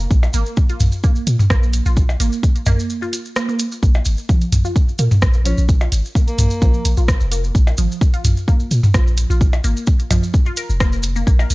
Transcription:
0.11 A#1, kick, maracas
0.23 percussion blips, maracas
0.33 G#1 A#3, closed hi-hat, maracas
0.46 maracas
0.57 kick, maracas
0.69 F4, closed hi-hat, maracas
0.80 A#1, closed hi-hat, mid tom, maracas
0.92 maracas
1.03 A#3, kick, maracas
1.16 maracas
1.27 A#2, closed hi-hat, maracas
1.39 mid tom, maracas
1.50 A#1 A#3, kick, cross-stick, maracas
1.63 maracas
1.73 closed hi-hat, maracas
1.86 A#1 F4, maracas
1.97 kick, maracas
2.09 percussion blips, maracas
2.20 G#1 A#3, closed hi-hat, maracas
2.33 maracas
2.43 kick, maracas
2.56 closed hi-hat, maracas
2.66 A#1 A#3, closed hi-hat, mid tom, percussion blips, maracas
2.80 maracas
2.90 maracas
3.02 F4, maracas
3.13 closed hi-hat, maracas
3.25 maracas
3.36 A#3, cross-stick, maracas
3.49 A#3, maracas
3.59 closed hi-hat, maracas
3.72 maracas
3.83 A#1 A#3, kick, maracas
3.94 percussion blips, maracas
4.05 G#1, closed hi-hat, maracas
4.18 maracas
4.29 F3, kick, maracas
4.41 closed hi-hat, maracas
4.52 A#1, closed hi-hat, mid tom, maracas
4.65 F4, maracas
4.76 kick, maracas
4.89 maracas
4.98 A#2 A#3, closed hi-hat, maracas
5.11 mid tom, maracas
5.22 A#1, kick, cross-stick, maracas
5.34 maracas
5.45 F3 C#4, closed hi-hat, maracas
5.58 A#1, maracas
5.69 kick, maracas
5.81 F4, percussion blips, maracas
5.92 G#1, closed hi-hat, maracas
6.05 maracas
6.15 A#3, kick, maracas
6.28 A#3, closed hi-hat, maracas
6.38 A#1, closed hi-hat, mid tom, maracas
6.50 maracas
6.62 A#1 F3, kick, maracas
6.74 maracas
6.85 A#1, closed hi-hat, maracas
6.97 A#1 F4, maracas
7.08 kick, cross-stick, maracas
7.20 F1, maracas
7.32 A#3, closed hi-hat, maracas
7.44 maracas
7.55 A#1, kick, maracas
7.67 percussion blips, maracas
7.78 G#1 F3, closed hi-hat, maracas
7.92 maracas
8.01 kick, maracas
8.14 F4, closed hi-hat, maracas
8.25 A#1, closed hi-hat, mid tom, maracas
8.37 maracas
8.48 A#3, kick, maracas
8.60 maracas
8.71 A#2, closed hi-hat, maracas
8.83 mid tom, maracas
8.94 A#1 F3, kick, cross-stick, maracas
9.07 maracas
9.17 closed hi-hat, maracas
9.30 A#1 F4, maracas
9.41 kick, maracas
9.53 percussion blips, maracas
9.64 G#1 A#3, closed hi-hat, maracas
9.77 maracas
9.87 kick, maracas
10.00 closed hi-hat, maracas
10.11 A#1 F3, closed hi-hat, mid tom, percussion blips, maracas
10.23 maracas
10.34 kick, maracas
10.46 F4, maracas
10.57 A#4, closed hi-hat, maracas
10.70 F1, maracas
10.80 A#3, kick, cross-stick, maracas
10.93 maracas
11.03 closed hi-hat, maracas
11.16 A#3, maracas
11.27 A#1 A#3, kick, maracas
11.39 A#4, percussion blips, maracas
11.50 G#1, closed hi-hat, maracas

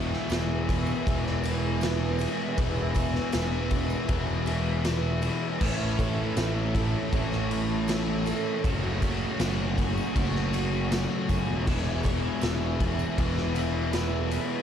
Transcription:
Already playing: E1 E2 B2 E3 G#3 B3 E4 G#4 B4 E5 G#5 E6
0.12 snare, tambourine
0.29 E1 E3 G#3 B3 E4, snare, ride, tambourine
0.68 G#3 B3 E4 G#4, kick, ride
0.87 tambourine
1.06 E1 E2 B2 E3 G#3 B3 E4, kick, ride, tambourine
1.24 snare, tambourine
1.44 E3 G#3 B3 E4, ride, tambourine
1.81 E3 G#3 B3 E4, snare, ride, tambourine
2.19 G#3 B3 E4 G#4, ride, tambourine
2.56 E1 E2 B2 E3 G#3 B3, kick, ride, tambourine
2.60 E4
2.76 tambourine
2.94 B3 E4 G#4, kick, ride, tambourine
2.99 G#3
3.14 snare, tambourine
3.32 E1 E3 G#3 B3, snare, ride, tambourine
3.37 E4
3.52 tambourine
3.71 G#3 B3 E4 G#4, kick, ride
3.90 tambourine
4.09 E1 E2 B2 E3 G#3 B3 E4, kick, ride, tambourine
4.28 tambourine
4.46 E3 B3 E4, ride, tambourine
4.50 G#3
4.84 E3 G#3 B3 E4, snare, ride, tambourine
5.22 G#3 B3 E4 G#4, ride, tambourine
5.59 A1 A2 E3 A3 C#4 E4 C#5 A5, kick, tambourine, crash
5.80 tambourine
5.98 A3 C#4 E4 A4, kick, ride, tambourine
6.18 tambourine
6.36 A1 E3 A3 C#4 E4, snare, ride, tambourine
6.56 tambourine
6.74 A3 C#4 E4 A4, kick, ride
7.11 A1 A2 E3 A3 C#4 E4, kick, ride, tambourine
7.32 snare, tambourine
7.50 E3 A3 C#4 E4, ride
7.88 E3 A3 C#4 E4, snare, ride, tambourine
8.26 A3 C#4 E4 A4, ride, tambourine
8.63 F#1 F#2 C#3 F#3 A3 C#4 F#4 F#5 G#5 C#6, kick, ride, tambourine
8.83 tambourine
9.01 A3 C#4 F#4 G#4, kick, ride, tambourine
9.21 tambourine
9.39 F#1 F#3 A3 C#4 F#4, snare, ride, tambourine
9.60 tambourine
9.77 A3 C#4 F#4 G#4, kick, ride, tambourine
9.97 tambourine
10.14 F#1 F#2 C#3 F#3 A3 C#4 F#4, kick, ride, tambourine
10.34 snare, tambourine
10.52 F#3 A3 C#4 F#4, ride, tambourine
10.72 tambourine
10.91 F#3 A3 C#4 F#4, snare, ride, tambourine
11.29 F#1 A3 C#4 F#4 G#4, kick, ride, tambourine
11.48 E1, tambourine
11.66 E1 E2 B2 E3 G#3 B3 E4 B4 E5 E6, kick, tambourine, crash
11.85 tambourine
12.03 B3 E4 G#4, kick, ride, tambourine
12.07 G#3
12.23 tambourine
12.41 E1 E3 G#3 B3, snare, ride, tambourine
12.46 E4
12.61 tambourine
12.80 G#3 B3 E4 G#4, kick, ride
12.99 tambourine
13.17 E1 E2 B2 E3 G#3 B3 E4, kick, ride, tambourine
13.36 snare, tambourine
13.55 E3 G#3 B3 E4, ride, tambourine
13.92 E3 G#3 B3 E4, snare, ride, tambourine
14.30 G#3 B3 E4 G#4, ride, tambourine

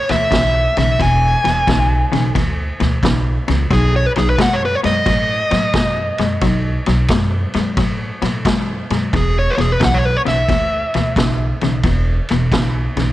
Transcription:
0.09 D2 E2 B2 E5, snare, ride
0.31 B1 E2 C#3, kick, snare, ride
0.77 B1 E2 C#3 E5, snare, ride
0.99 E1 E2 B2 G#5, kick, snare, ride
1.44 E1 E2 B2, snare, ride
1.67 B1 E2 C#3, kick, snare, ride
2.12 B1 E2 C#3, snare, ride
2.35 D2 E2 B2, kick, snare, ride
2.80 D2 E2 B2, snare, ride
3.03 B1 E2 C#3, kick, snare, ride
3.48 C#2 E2 C#3, snare, ride
3.71 B1 B2 F#3 G#4, kick, snare, ride
3.96 C#5
4.06 B4
4.16 B1 B2 F#3 G#4, snare, ride
4.30 B4
4.38 F#2 B2 G#3 F#5, kick, snare, ride
4.53 C#5
4.65 B4
4.75 C#5
4.84 F#2 B2 G#3 D#5, snare, ride
5.06 A2 B2 F#3, kick, snare, ride
5.51 A2 B2 F#3, snare, ride
5.73 F#2 B2 G#3, kick, snare, ride
6.18 F#2 B2 G#3, snare, ride
6.41 B1 B2 F#3, kick, snare, ride
6.86 B1 B2 F#3, snare, ride
7.08 F#2 B2 G#3, kick, snare, ride
7.54 F#2 B2 G#3, snare, ride
7.77 A2 B2 F#3, kick, snare, ride
8.22 A2 B2 F#3, snare, ride
8.45 F#2 B2 G#3, kick, snare, ride
8.90 F#2 B2 G#3, snare, ride
9.13 E1 E2 B2 G#4, kick, snare, ride
9.39 C#5
9.50 B4
9.58 E1 E2 B2 G#4, snare, ride
9.72 B4
9.80 B1 E2 C#3, kick, snare, ride
9.84 F#5
9.94 C#5
10.05 B4
10.17 C#5
10.25 B1 E2 C#3 E5, snare, ride
10.48 D2 E2 B2, kick, snare, ride
10.94 D2 E2 B2, snare, ride
11.16 B1 E2 C#3, kick, snare, ride
11.61 B1 E2 C#3, snare, ride
11.83 E1 E2 B2, kick, snare, ride
12.29 E1 E2 B2, snare, ride
12.52 B1 E2 C#3, kick, snare, ride
12.96 B1 E2 C#3, snare, ride

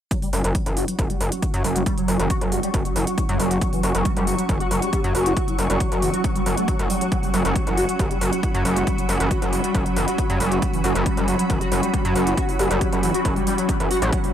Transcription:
0.11 F#3 C#4 F#4, kick, closed hi-hat
0.20 G3 F#4 F#5, open hi-hat
0.33 F#1 G3, open hi-hat
0.44 F#1 F#3, closed hi-hat
0.55 F#3, kick, closed hi-hat
0.64 F#1 E3 C#6, closed hi-hat
0.77 F#4, open hi-hat
0.88 F#3, closed hi-hat
0.99 F#1 G3, kick, closed hi-hat
1.10 G3, closed hi-hat
1.21 F#1 F#3, open hi-hat
1.32 F#3, closed hi-hat
1.42 E3, kick, closed hi-hat
1.54 F#2 F#4, closed hi-hat
1.64 F#1 F#3, open hi-hat
1.76 G3, closed hi-hat
1.86 G3, kick, closed hi-hat
1.98 F#3, closed hi-hat
2.08 F#1 F#3, open hi-hat
2.19 F#1 E3, closed hi-hat
2.30 F#4, kick, closed hi-hat
2.41 F#1 F#3, closed hi-hat
2.52 G3, open hi-hat
2.63 G3, closed hi-hat
2.74 F#1 F#3, kick, closed hi-hat
2.85 F#3, closed hi-hat
2.96 F#1 E3, open hi-hat
3.07 F#4, closed hi-hat
3.18 F#3, kick, closed hi-hat
3.29 F#2 G3, closed hi-hat
3.40 F#1 G3, open hi-hat
3.51 F#3, closed hi-hat
3.61 F#3, kick, closed hi-hat
3.73 E3, open hi-hat
3.83 F#1 F#4, open hi-hat
3.95 F#1 F#3, closed hi-hat
4.05 G3, kick, closed hi-hat
4.17 F#1 G3, closed hi-hat
4.27 F#3, open hi-hat
4.39 F#3, closed hi-hat
4.49 F#1 E3, kick, closed hi-hat
4.60 F#4, closed hi-hat
4.71 F#1 F#3, open hi-hat
4.82 G3, closed hi-hat
4.93 G3, kick, closed hi-hat
5.04 F#2 F#3, closed hi-hat
5.15 F#1 F#3, open hi-hat
5.26 E3, closed hi-hat
5.37 F#4, kick, closed hi-hat
5.48 F#3, closed hi-hat
5.59 F#1 G3, open hi-hat
5.70 F#1 G3, closed hi-hat
5.80 F#3, kick, closed hi-hat
5.92 F#1 F#3, closed hi-hat
6.02 E3, open hi-hat
6.14 F#4, closed hi-hat
6.24 F#3, kick, closed hi-hat
6.36 G3, closed hi-hat
6.46 F#1 F#3, open hi-hat
6.57 A3, closed hi-hat
6.68 F#3, kick, closed hi-hat
6.79 F#1 F#3, closed hi-hat
6.90 G3, open hi-hat
7.01 F#3, closed hi-hat
7.12 F#3, kick, closed hi-hat
7.23 G3, open hi-hat
7.34 F#1 G3, open hi-hat
7.45 F#1 F#3, closed hi-hat
7.56 F#3, kick, closed hi-hat
7.65 F#1 E3 B5, closed hi-hat
7.77 F#4, open hi-hat
7.89 F#3, closed hi-hat
7.99 F#1 G3, kick, closed hi-hat
8.11 G3, closed hi-hat
8.21 F#1 F#3, open hi-hat
8.33 F#3, closed hi-hat
8.43 E3, kick, closed hi-hat
8.54 F#2 F#4, closed hi-hat
8.65 F#1 F#3, open hi-hat
8.76 G3, closed hi-hat
8.87 G3, kick, closed hi-hat
8.98 F#3, closed hi-hat
9.09 F#1 F#3, open hi-hat
9.20 F#1 E3, closed hi-hat
9.31 F#4, kick, closed hi-hat
9.42 F#1 F#3, closed hi-hat
9.53 G3, open hi-hat
9.64 G3, closed hi-hat
9.75 F#1 F#3, kick, closed hi-hat
9.86 F#3, closed hi-hat
9.96 F#1 E3, open hi-hat
10.08 F#4, closed hi-hat
10.18 F#3, kick, closed hi-hat
10.30 F#2 G3, closed hi-hat
10.40 F#1 G3, open hi-hat
10.52 F#3, closed hi-hat
10.62 F#3, kick, closed hi-hat
10.74 E3, open hi-hat
10.84 F#1 F#4, open hi-hat
10.95 F#1 F#3, closed hi-hat
11.06 G3, kick, closed hi-hat
11.17 F#1 G3, closed hi-hat
11.28 F#3, open hi-hat
11.39 F#3, closed hi-hat
11.50 F#1 E3, kick, closed hi-hat
11.61 F#4, closed hi-hat
11.72 F#1 F#3, open hi-hat
11.83 G3, closed hi-hat
11.94 G3, kick, closed hi-hat
12.05 F#2 F#3, closed hi-hat
12.16 F#1 F#3, open hi-hat
12.27 E3, closed hi-hat
12.37 F#4, kick, closed hi-hat
12.49 F#3, open hi-hat
12.59 F#1 G3, open hi-hat
12.71 F#1 G3, closed hi-hat
12.81 F#3, kick, closed hi-hat
12.93 F#1 F#3, closed hi-hat
13.03 E3, open hi-hat
13.14 F#4, closed hi-hat
13.25 F#1 F#3, kick, closed hi-hat
13.36 G3, open hi-hat
13.47 G3, open hi-hat
13.58 F#3, closed hi-hat
13.69 F#3, kick, closed hi-hat
13.80 F#1 E3, closed hi-hat
13.91 F#4, open hi-hat
14.02 A1 F#3, closed hi-hat
14.13 F#3, kick, closed hi-hat
14.24 G3, open hi-hat

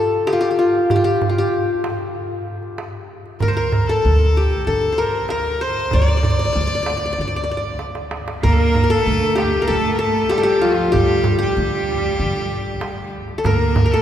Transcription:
Already playing: F4 G4 A4
0.12 darbuka ka
0.27 G4, darbuka tek
0.33 F4
0.41 G4
0.51 G4
0.59 F4
0.75 darbuka ka
0.90 G4, darbuka dum
0.96 F4
1.04 G4
1.22 darbuka dum
1.29 F4
1.38 G4
1.53 darbuka ka
1.84 darbuka tek
1.99 darbuka ka
2.62 darbuka ka
2.78 darbuka tek
3.26 darbuka ka
3.40 D2 A#4, darbuka dum
3.48 C5
3.55 A#4
3.72 darbuka dum
3.87 A4
4.03 D2, darbuka ka
4.37 G4
4.50 darbuka ka
4.66 D3 A4
4.92 C5
4.98 A#4
5.14 darbuka ka
5.29 A#4, darbuka tek
5.61 C5
5.77 darbuka ka
5.91 D2 D5, darbuka dum
6.02 D5
6.08 D5
6.17 D5
6.23 D5, darbuka dum
6.30 D5
6.39 D5
6.45 D5
6.53 D2 D5, darbuka ka
6.61 D5
6.67 D5, darbuka ka
6.75 D5
6.83 D5, darbuka tek
6.90 D5
6.97 D5
7.06 D5
7.13 D5
7.18 D3 D5, darbuka ka
7.28 D5
7.33 D5, darbuka ka
7.44 D5
7.51 D5
7.57 D5
7.79 darbuka tek
7.95 darbuka ka
8.11 darbuka tek
8.28 darbuka ka
8.43 D2 A#3 A#4, darbuka dum
8.52 A4
8.58 A#4
8.75 darbuka dum
8.84 A#4
8.89 A3 A4
9.06 D2, darbuka ka
9.35 G4, darbuka tek
9.53 darbuka ka
9.62 A#3 A#4
9.67 D3 A3 A4
9.94 A#4
9.99 A3 A4
10.16 darbuka ka
10.29 G3 G4, darbuka tek
10.38 A4
10.43 G4
10.61 F3 F4
10.92 D2 G3 G4, darbuka dum
11.24 darbuka dum
11.39 G3 G4
11.55 D2, darbuka ka
12.03 darbuka ka
12.19 D3
12.66 darbuka ka
12.81 darbuka tek
13.29 darbuka ka
13.38 A4
13.44 D2 A#3 A#4, darbuka dum
13.76 darbuka dum
13.86 A#4
13.91 A3 A4

